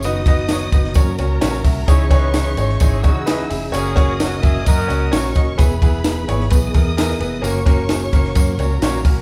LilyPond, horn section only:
\new Staff \with { instrumentName = "Horn section" } { \time 4/4 \key fis \mixolydian \tempo 4 = 130 r1 | <e' gis' cis''>8 <e' gis' b'>4 r8 <gis e' gis'>8 <cis' dis' fis'>4 r8 | <ais cis' gis'>4 <ais cis' fis'>8 <cis' e' gis'>8 <cis' fis' ais'>4. r8 | r1 |
r1 | }